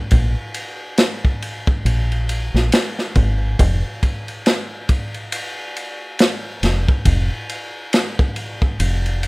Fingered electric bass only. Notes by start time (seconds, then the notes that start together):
0.12 A#1
1.85 A#1
2.54 A#1
3.16 G#1
3.60 F1
6.63 F1
7.06 F1
8.80 F1